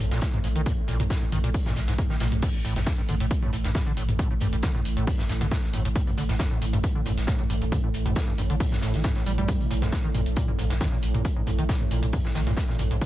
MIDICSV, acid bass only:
0, 0, Header, 1, 2, 480
1, 0, Start_track
1, 0, Tempo, 441176
1, 719, Time_signature, 4, 2, 24, 8
1, 14208, End_track
2, 0, Start_track
2, 0, Title_t, "Acid bass"
2, 0, Program_c, 0, 38
2, 124, Note_on_c, 0, 46, 79
2, 218, Note_off_c, 0, 46, 0
2, 365, Note_on_c, 0, 44, 78
2, 428, Note_off_c, 0, 44, 0
2, 478, Note_on_c, 0, 44, 76
2, 521, Note_off_c, 0, 44, 0
2, 604, Note_on_c, 0, 51, 79
2, 667, Note_off_c, 0, 51, 0
2, 718, Note_on_c, 0, 46, 82
2, 788, Note_off_c, 0, 46, 0
2, 956, Note_on_c, 0, 46, 77
2, 1062, Note_off_c, 0, 46, 0
2, 1084, Note_on_c, 0, 46, 76
2, 1123, Note_off_c, 0, 46, 0
2, 1197, Note_on_c, 0, 44, 79
2, 1268, Note_off_c, 0, 44, 0
2, 1325, Note_on_c, 0, 44, 77
2, 1363, Note_off_c, 0, 44, 0
2, 1438, Note_on_c, 0, 51, 75
2, 1509, Note_off_c, 0, 51, 0
2, 1565, Note_on_c, 0, 46, 75
2, 1628, Note_off_c, 0, 46, 0
2, 1805, Note_on_c, 0, 46, 78
2, 1899, Note_off_c, 0, 46, 0
2, 1917, Note_on_c, 0, 46, 72
2, 1960, Note_off_c, 0, 46, 0
2, 2043, Note_on_c, 0, 44, 78
2, 2107, Note_off_c, 0, 44, 0
2, 2158, Note_on_c, 0, 44, 81
2, 2200, Note_off_c, 0, 44, 0
2, 2283, Note_on_c, 0, 51, 78
2, 2347, Note_off_c, 0, 51, 0
2, 2397, Note_on_c, 0, 46, 76
2, 2468, Note_off_c, 0, 46, 0
2, 2638, Note_on_c, 0, 45, 82
2, 2708, Note_off_c, 0, 45, 0
2, 2878, Note_on_c, 0, 45, 76
2, 2983, Note_off_c, 0, 45, 0
2, 3005, Note_on_c, 0, 45, 79
2, 3043, Note_off_c, 0, 45, 0
2, 3118, Note_on_c, 0, 43, 80
2, 3188, Note_off_c, 0, 43, 0
2, 3246, Note_on_c, 0, 43, 74
2, 3283, Note_off_c, 0, 43, 0
2, 3359, Note_on_c, 0, 50, 73
2, 3429, Note_off_c, 0, 50, 0
2, 3485, Note_on_c, 0, 45, 78
2, 3548, Note_off_c, 0, 45, 0
2, 3725, Note_on_c, 0, 45, 78
2, 3819, Note_off_c, 0, 45, 0
2, 3839, Note_on_c, 0, 45, 74
2, 3881, Note_off_c, 0, 45, 0
2, 3965, Note_on_c, 0, 43, 79
2, 4028, Note_off_c, 0, 43, 0
2, 4078, Note_on_c, 0, 43, 85
2, 4121, Note_off_c, 0, 43, 0
2, 4205, Note_on_c, 0, 50, 74
2, 4268, Note_off_c, 0, 50, 0
2, 4319, Note_on_c, 0, 45, 75
2, 4389, Note_off_c, 0, 45, 0
2, 4559, Note_on_c, 0, 45, 82
2, 4664, Note_off_c, 0, 45, 0
2, 4686, Note_on_c, 0, 45, 76
2, 4724, Note_off_c, 0, 45, 0
2, 4800, Note_on_c, 0, 43, 77
2, 4869, Note_off_c, 0, 43, 0
2, 4926, Note_on_c, 0, 43, 75
2, 4964, Note_off_c, 0, 43, 0
2, 5037, Note_on_c, 0, 50, 80
2, 5108, Note_off_c, 0, 50, 0
2, 5165, Note_on_c, 0, 45, 76
2, 5228, Note_off_c, 0, 45, 0
2, 5405, Note_on_c, 0, 45, 75
2, 5499, Note_off_c, 0, 45, 0
2, 5646, Note_on_c, 0, 43, 82
2, 5708, Note_off_c, 0, 43, 0
2, 5758, Note_on_c, 0, 43, 74
2, 5801, Note_off_c, 0, 43, 0
2, 5885, Note_on_c, 0, 50, 77
2, 5948, Note_off_c, 0, 50, 0
2, 5999, Note_on_c, 0, 45, 83
2, 6069, Note_off_c, 0, 45, 0
2, 6237, Note_on_c, 0, 45, 78
2, 6343, Note_off_c, 0, 45, 0
2, 6365, Note_on_c, 0, 45, 80
2, 6403, Note_off_c, 0, 45, 0
2, 6478, Note_on_c, 0, 43, 80
2, 6548, Note_off_c, 0, 43, 0
2, 6604, Note_on_c, 0, 43, 78
2, 6643, Note_off_c, 0, 43, 0
2, 6718, Note_on_c, 0, 50, 74
2, 6789, Note_off_c, 0, 50, 0
2, 6844, Note_on_c, 0, 45, 76
2, 6908, Note_off_c, 0, 45, 0
2, 7084, Note_on_c, 0, 45, 77
2, 7179, Note_off_c, 0, 45, 0
2, 7198, Note_on_c, 0, 45, 74
2, 7240, Note_off_c, 0, 45, 0
2, 7324, Note_on_c, 0, 43, 77
2, 7387, Note_off_c, 0, 43, 0
2, 7437, Note_on_c, 0, 43, 80
2, 7480, Note_off_c, 0, 43, 0
2, 7565, Note_on_c, 0, 50, 82
2, 7628, Note_off_c, 0, 50, 0
2, 7677, Note_on_c, 0, 45, 74
2, 7748, Note_off_c, 0, 45, 0
2, 7919, Note_on_c, 0, 45, 86
2, 8024, Note_off_c, 0, 45, 0
2, 8045, Note_on_c, 0, 45, 78
2, 8083, Note_off_c, 0, 45, 0
2, 8158, Note_on_c, 0, 43, 75
2, 8228, Note_off_c, 0, 43, 0
2, 8286, Note_on_c, 0, 43, 80
2, 8323, Note_off_c, 0, 43, 0
2, 8398, Note_on_c, 0, 50, 80
2, 8468, Note_off_c, 0, 50, 0
2, 8525, Note_on_c, 0, 45, 76
2, 8588, Note_off_c, 0, 45, 0
2, 8764, Note_on_c, 0, 45, 80
2, 8859, Note_off_c, 0, 45, 0
2, 8877, Note_on_c, 0, 45, 81
2, 8920, Note_off_c, 0, 45, 0
2, 9005, Note_on_c, 0, 43, 75
2, 9068, Note_off_c, 0, 43, 0
2, 9118, Note_on_c, 0, 43, 78
2, 9161, Note_off_c, 0, 43, 0
2, 9246, Note_on_c, 0, 50, 76
2, 9308, Note_off_c, 0, 50, 0
2, 9358, Note_on_c, 0, 45, 83
2, 9428, Note_off_c, 0, 45, 0
2, 9597, Note_on_c, 0, 45, 76
2, 9724, Note_on_c, 0, 52, 78
2, 9740, Note_off_c, 0, 45, 0
2, 9818, Note_off_c, 0, 52, 0
2, 9837, Note_on_c, 0, 45, 86
2, 9908, Note_off_c, 0, 45, 0
2, 9965, Note_on_c, 0, 45, 78
2, 10059, Note_off_c, 0, 45, 0
2, 10078, Note_on_c, 0, 55, 77
2, 10148, Note_off_c, 0, 55, 0
2, 10205, Note_on_c, 0, 55, 80
2, 10445, Note_on_c, 0, 46, 80
2, 10462, Note_off_c, 0, 55, 0
2, 10539, Note_off_c, 0, 46, 0
2, 10559, Note_on_c, 0, 46, 80
2, 10601, Note_off_c, 0, 46, 0
2, 10685, Note_on_c, 0, 44, 78
2, 10748, Note_off_c, 0, 44, 0
2, 10798, Note_on_c, 0, 44, 81
2, 10841, Note_off_c, 0, 44, 0
2, 10927, Note_on_c, 0, 51, 72
2, 10989, Note_off_c, 0, 51, 0
2, 11037, Note_on_c, 0, 46, 75
2, 11108, Note_off_c, 0, 46, 0
2, 11277, Note_on_c, 0, 46, 78
2, 11383, Note_off_c, 0, 46, 0
2, 11404, Note_on_c, 0, 46, 77
2, 11442, Note_off_c, 0, 46, 0
2, 11517, Note_on_c, 0, 44, 77
2, 11588, Note_off_c, 0, 44, 0
2, 11643, Note_on_c, 0, 44, 77
2, 11682, Note_off_c, 0, 44, 0
2, 11756, Note_on_c, 0, 51, 89
2, 11828, Note_off_c, 0, 51, 0
2, 11883, Note_on_c, 0, 46, 79
2, 11947, Note_off_c, 0, 46, 0
2, 12123, Note_on_c, 0, 46, 80
2, 12218, Note_off_c, 0, 46, 0
2, 12236, Note_on_c, 0, 46, 84
2, 12280, Note_off_c, 0, 46, 0
2, 12364, Note_on_c, 0, 44, 81
2, 12427, Note_off_c, 0, 44, 0
2, 12477, Note_on_c, 0, 44, 75
2, 12520, Note_off_c, 0, 44, 0
2, 12603, Note_on_c, 0, 51, 77
2, 12667, Note_off_c, 0, 51, 0
2, 12717, Note_on_c, 0, 46, 80
2, 12788, Note_off_c, 0, 46, 0
2, 12958, Note_on_c, 0, 46, 77
2, 13063, Note_off_c, 0, 46, 0
2, 13083, Note_on_c, 0, 46, 81
2, 13122, Note_off_c, 0, 46, 0
2, 13198, Note_on_c, 0, 44, 80
2, 13269, Note_off_c, 0, 44, 0
2, 13325, Note_on_c, 0, 44, 78
2, 13363, Note_off_c, 0, 44, 0
2, 13439, Note_on_c, 0, 51, 77
2, 13509, Note_off_c, 0, 51, 0
2, 13565, Note_on_c, 0, 46, 79
2, 13628, Note_off_c, 0, 46, 0
2, 13805, Note_on_c, 0, 46, 78
2, 13899, Note_off_c, 0, 46, 0
2, 13918, Note_on_c, 0, 46, 77
2, 13961, Note_off_c, 0, 46, 0
2, 14045, Note_on_c, 0, 44, 79
2, 14108, Note_off_c, 0, 44, 0
2, 14159, Note_on_c, 0, 44, 80
2, 14201, Note_off_c, 0, 44, 0
2, 14208, End_track
0, 0, End_of_file